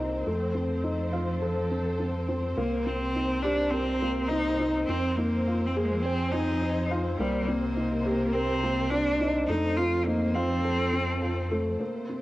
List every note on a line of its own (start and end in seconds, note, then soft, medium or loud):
0.00 0.24 C2 medium
0.00 0.27 C3 medium
0.00 0.29 A#3 medium
0.00 0.29 C4 medium
0.00 12.22 C4 medium
0.00 0.29 D#4 medium
0.00 0.29 G4 medium
0.00 0.27 A#4 medium
0.00 0.29 A#4 medium
0.00 12.22 C5 medium
0.25 2.55 F2 medium
0.25 2.57 F3 medium
0.25 0.54 A3 medium
0.55 0.83 C4 medium
0.84 1.12 D#4 medium
1.13 1.40 F4 medium
1.29 2.57 A4 medium
1.42 1.58 A4 medium
1.71 1.88 C4 medium
2.00 2.27 C4 medium
2.28 2.56 C4 medium
2.56 4.85 C2 medium
2.56 4.88 C3 medium
2.56 2.88 A#3 medium
2.56 2.85 A#3 medium
2.86 3.14 C4 medium
2.86 3.44 C4 medium
3.13 3.43 D#4 medium
3.13 5.80 A#4 medium
3.42 3.72 D4 medium
3.42 3.72 G4 medium
3.71 4.30 C4 loud
3.71 3.90 A#4 medium
4.02 4.30 A#3 medium
4.28 4.58 C4 medium
4.28 4.73 D#4 loud
4.60 4.87 D#4 medium
4.86 7.17 F2 medium
4.86 7.20 F3 medium
4.86 5.17 C4 loud
4.86 5.16 C4 medium
5.16 5.68 A#3 medium
5.16 5.45 D#4 medium
5.47 5.74 F4 medium
5.67 5.78 C4 medium
5.76 5.86 A#3 medium
5.76 6.03 G#4 medium
5.85 5.95 G#3 medium
5.92 6.03 A#3 medium
5.92 7.19 G#4 medium
6.02 6.33 C4 medium
6.02 6.21 C5 medium
6.31 6.61 C4 medium
6.31 6.90 D#4 medium
6.62 6.89 D#4 medium
6.91 7.18 F4 medium
7.18 9.47 C2 medium
7.18 9.50 C3 medium
7.18 7.50 G3 medium
7.18 7.47 A#3 medium
7.48 8.34 A#3 medium
7.48 7.75 C4 medium
7.67 9.50 A#4 medium
7.77 8.04 D#4 medium
8.06 8.33 G4 loud
8.33 8.91 C4 loud
8.33 8.51 A#4 medium
8.63 8.91 A#3 medium
8.90 9.19 C4 medium
8.90 9.34 D4 loud
9.21 9.49 D#4 medium
9.47 11.77 F2 medium
9.47 11.81 F3 medium
9.47 9.77 A3 loud
9.47 9.79 D#4 loud
9.77 10.06 C4 medium
9.77 10.07 F4 medium
10.06 10.36 A#3 medium
10.06 10.35 D#4 medium
10.33 11.51 C4 loud
10.33 10.64 F4 medium
10.33 11.81 A4 medium
10.64 10.81 A4 medium
10.93 11.21 C4 medium
11.22 11.39 F4 medium
11.52 11.68 A3 medium
11.80 12.22 C3 medium
11.80 12.08 A#3 medium
11.80 11.85 C5 medium
12.09 12.22 C4 medium
12.09 12.21 C6 medium